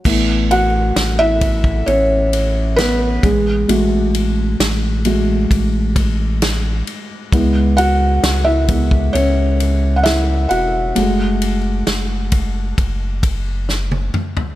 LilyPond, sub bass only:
\new Staff \with { instrumentName = "Sub bass" } { \clef bass \time 4/4 \key fis \minor \tempo 4 = 66 a,,4 a,,4 a,,4. a,,8 | a,,4 a,,4 a,,4. r8 | cis,4 cis,4 cis,4. e,,8 | fis,,4 fis,,4 fis,,4. r8 | }